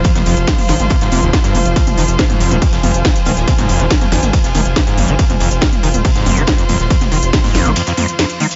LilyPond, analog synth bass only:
\new Staff \with { instrumentName = "Analog synth bass" } { \clef bass \time 4/4 \key f \minor \tempo 4 = 140 r16 f,,16 f,,16 f,,16 r8 aes,,16 aes,,16 r16 f,,16 f,,16 f,,16 r8 f,,16 f,,16 | r16 f,,16 f,,16 f,,16 r8 f,,16 ees,,16 r16 f,,16 f,,16 f,,16 r8 ees,,16 ees,,16 | r16 f,,16 f,,16 f,,16 r8 aes,,16 aes,,16 r16 f,,16 f,,16 f,,16 r8 g,,16 g,,16 | r16 f,,16 f,,16 f,,16 r8 f,,16 ees,,16 r16 f,,16 f,,16 f,,16 r8 ees,,16 ees,,16 |
r16 f,,16 f,,16 f,,16 r8 aes,,16 aes,,16 r2 | }